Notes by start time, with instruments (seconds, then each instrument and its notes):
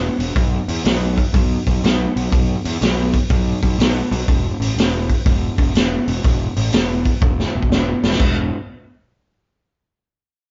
0.19 picked electric bass E1, open hi-hat
0.36 picked electric bass B1, kick, open hi-hat
0.68 picked electric bass E2, open hi-hat
0.85 picked electric bass B1, snare, open hi-hat
1.18 kick, open hi-hat
1.34 picked electric bass B1, kick, open hi-hat
1.67 picked electric bass B1, kick, open hi-hat
1.84 picked electric bass B1, snare, open hi-hat
2.16 picked electric bass B1, open hi-hat
2.32 picked electric bass B1, kick, open hi-hat
2.65 picked electric bass E2, open hi-hat
2.81 picked electric bass B1, snare, open hi-hat
3.14 kick, open hi-hat
3.30 picked electric bass B1, kick, open hi-hat
3.63 picked electric bass B1, kick, open hi-hat
3.79 picked electric bass B1, snare, open hi-hat
4.11 picked electric bass B1, open hi-hat
4.28 picked electric bass E1, kick, open hi-hat
4.60 picked electric bass A1, open hi-hat
4.76 picked electric bass E1, snare, open hi-hat
5.09 kick, open hi-hat
5.26 picked electric bass E1, kick, open hi-hat
5.58 picked electric bass E1, kick, open hi-hat
5.75 picked electric bass E1, snare, open hi-hat
6.08 picked electric bass E1, open hi-hat
6.24 picked electric bass E1, kick, open hi-hat
6.56 picked electric bass A1, open hi-hat
6.73 picked electric bass E1, snare, open hi-hat
7.05 kick, open hi-hat
7.21 picked electric bass E1, kick, high tom
7.40 snare
7.55 picked electric bass E1
7.63 kick
7.71 picked electric bass E1, snare
8.04 picked electric bass E1, snare
8.12 snare
8.19 picked electric bass E1, kick, crash